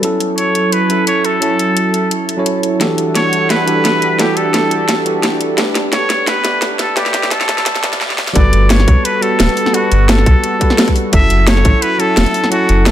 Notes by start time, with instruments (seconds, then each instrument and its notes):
Already playing: analog synth pad A4
0.02 tine electric piano F#3 C#4 E4 A4, analog synth pad F#3 E4, closed hi-hat
0.20 closed hi-hat
0.38 muted trumpet C#5, closed hi-hat
0.55 closed hi-hat
0.72 muted trumpet B4, closed hi-hat
0.88 tine electric piano F#3 C#4 E4 A4, closed hi-hat
1.07 muted trumpet C#5, closed hi-hat
1.25 muted trumpet A4, closed hi-hat
1.40 tine electric piano F#3 C#4 E4 A4, closed hi-hat
1.59 closed hi-hat
1.77 closed hi-hat
1.94 closed hi-hat
2.11 closed hi-hat
2.29 closed hi-hat
2.37 tine electric piano F#3 C#4 E4 C#5
2.46 closed hi-hat
2.63 closed hi-hat
2.79 tine electric piano E3 D4 F#4 G4 A4, analog synth pad G3 D4 A4 F#5, snare, closed hi-hat
2.98 closed hi-hat
3.15 muted trumpet C#5, snare, closed hi-hat
3.33 closed hi-hat
3.50 muted trumpet B4, snare, closed hi-hat
3.66 tine electric piano E3 D4 F#4 G4 A4, closed hi-hat
3.85 snare, closed hi-hat
4.02 closed hi-hat
4.18 tine electric piano E3 D4 F#4 G4 A4, muted trumpet G4, snare, closed hi-hat
4.37 muted trumpet A4, closed hi-hat
4.54 snare, closed hi-hat
4.71 closed hi-hat
4.89 snare, closed hi-hat
5.05 tine electric piano E3 D4 F#4 G4 A4, closed hi-hat
5.23 snare, closed hi-hat
5.41 closed hi-hat
5.57 tine electric piano A3 D4 G4 B4, analog synth pad B3, snare, closed hi-hat
5.75 snare, closed hi-hat
5.93 muted trumpet C#5, snare, closed hi-hat
6.10 snare, closed hi-hat
6.27 muted trumpet B4, snare, closed hi-hat
6.43 tine electric piano A3 G4 B4 D5, snare, closed hi-hat
6.62 snare, closed hi-hat
6.79 muted trumpet A4, snare, closed hi-hat
6.95 tine electric piano A3 G4 B4 D5, muted trumpet G4, snare, closed hi-hat
7.06 snare
7.14 snare, closed hi-hat
7.23 snare
7.31 muted trumpet A4, snare, closed hi-hat
7.41 snare
7.49 snare, closed hi-hat
7.58 snare
7.66 snare, closed hi-hat
7.75 snare
7.82 tine electric piano A3 G4 B4 D5, snare, closed hi-hat
7.93 snare
8.01 snare
8.10 snare
8.18 snare
8.27 snare
8.34 sub bass G1, tine electric piano G3 F#4 A4 B4, analog synth pad B3 F#4 A4, muted trumpet D5, kick, closed hi-hat
8.53 sub bass G1, closed hi-hat
8.70 muted trumpet C#5, snare, closed hi-hat
8.80 snare
8.88 sub bass B1, kick, closed hi-hat
9.05 muted trumpet B4, closed hi-hat
9.21 tine electric piano G3 F#4 A4 B4, muted trumpet A4, closed hi-hat
9.40 sub bass D1, snare, closed hi-hat
9.49 closed hi-hat
9.57 open hi-hat
9.66 snare
9.73 tine electric piano G3 F#4 A4 B4, muted trumpet F#4, closed hi-hat
9.92 sub bass G1, closed hi-hat
10.09 muted trumpet A4, snare, closed hi-hat
10.18 snare
10.26 sub bass B1, kick, closed hi-hat
10.44 closed hi-hat
10.60 tine electric piano G3 F#4 A4 B4, kick, closed hi-hat
10.70 snare
10.78 snare, closed hi-hat
10.88 kick, closed hi-hat
10.96 open hi-hat
11.12 sub bass F#1, tine electric piano F#3 C#4 E4 A4, analog synth pad E4 A4, muted trumpet E5, kick, closed hi-hat
11.30 sub bass F#1, closed hi-hat
11.47 muted trumpet C#5, snare, closed hi-hat
11.57 snare
11.65 sub bass A1, kick, closed hi-hat
11.82 muted trumpet B4, closed hi-hat
11.98 tine electric piano F#3 C#4 E4 A4, muted trumpet A4, closed hi-hat
12.17 sub bass E1, snare, closed hi-hat
12.26 closed hi-hat
12.34 open hi-hat
12.44 snare
12.50 tine electric piano F#3 C#4 E4 A4, muted trumpet F#4, closed hi-hat
12.69 sub bass F#1, closed hi-hat
12.86 muted trumpet A4, snare, closed hi-hat